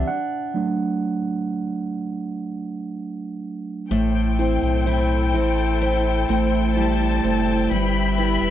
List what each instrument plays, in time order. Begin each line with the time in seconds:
Already playing: steel-string acoustic guitar G3 D4 E4
0.08 tine electric piano F#5
0.54 tine electric piano F#3 A3 D4
3.91 sub bass A1, steel-string acoustic guitar A2, tine electric piano A3, string section E4 A4 C5 G5, violin section G5
4.39 steel-string acoustic guitar C4, tine electric piano E4
4.63 sub bass B1
4.86 steel-string acoustic guitar E4, tine electric piano C5
5.34 sub bass A1, steel-string acoustic guitar C4, tine electric piano E4
5.81 steel-string acoustic guitar E4, tine electric piano C5
6.29 sub bass A1, tine electric piano A3, steel-string acoustic guitar C4
6.76 steel-string acoustic guitar G3, tine electric piano E4, violin section A5
7.24 sub bass F#1, tine electric piano A3, steel-string acoustic guitar C4
7.71 sub bass G1, steel-string acoustic guitar G3, tine electric piano G3, string section B4 E5, violin section B5
8.18 steel-string acoustic guitar B3, tine electric piano E4
8.41 sub bass E1